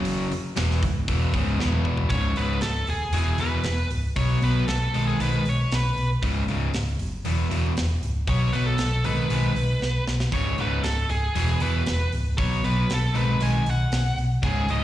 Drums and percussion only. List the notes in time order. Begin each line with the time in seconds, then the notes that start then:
0.05 open hi-hat
0.32 open hi-hat
0.56 snare, open hi-hat
0.71 snare
0.83 kick, open hi-hat
1.08 kick, open hi-hat
1.34 kick, open hi-hat
1.60 snare
1.72 high tom
1.85 mid tom
1.97 floor tom
2.10 kick, open hi-hat
2.36 open hi-hat
2.61 snare, open hi-hat
2.87 open hi-hat
3.13 open hi-hat
3.38 open hi-hat
3.64 snare, open hi-hat
3.91 open hi-hat
4.16 kick, open hi-hat
4.42 open hi-hat
4.68 snare, open hi-hat
4.94 open hi-hat
5.20 open hi-hat
5.45 open hi-hat
5.72 snare, open hi-hat
5.98 open hi-hat
6.23 kick, open hi-hat
6.48 open hi-hat
6.74 snare, open hi-hat
6.99 open hi-hat
7.25 open hi-hat
7.51 open hi-hat
7.77 snare, open hi-hat
8.03 open hi-hat
8.27 kick, open hi-hat
8.53 open hi-hat
8.78 snare, open hi-hat
9.04 open hi-hat
9.30 open hi-hat
9.56 open hi-hat
9.82 snare
10.08 snare
10.20 snare
10.32 kick, open hi-hat
10.58 open hi-hat
10.84 snare, open hi-hat
11.09 open hi-hat
11.35 open hi-hat
11.60 open hi-hat
11.86 snare, open hi-hat
12.12 open hi-hat
12.38 kick, open hi-hat
12.64 open hi-hat
12.90 snare, open hi-hat
13.15 open hi-hat
13.40 open hi-hat
13.66 open hi-hat
13.92 snare, open hi-hat
14.18 open hi-hat
14.43 kick, open hi-hat
14.69 open hi-hat